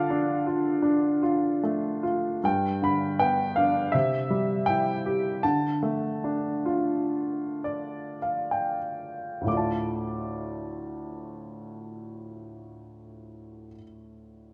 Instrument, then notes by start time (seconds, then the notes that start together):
upright piano
Already playing: D3 F4 A4 D5 F5
0.10 D4
0.47 F4
0.82 D4
1.23 F4
1.63 A3
2.03 F4
2.44 G2 G5
2.82 D3 B5
3.19 B3 G5
3.56 D4 F5
3.92 C3 E5
4.30 G3
4.66 E4 G5
5.06 G4
5.43 D3 A5
5.83 A3
6.24 D4
6.66 F4
7.64 D5
8.22 F5
8.51 G5
9.41 D2 A2
9.47 A3 F4 D6
9.53 D5 A5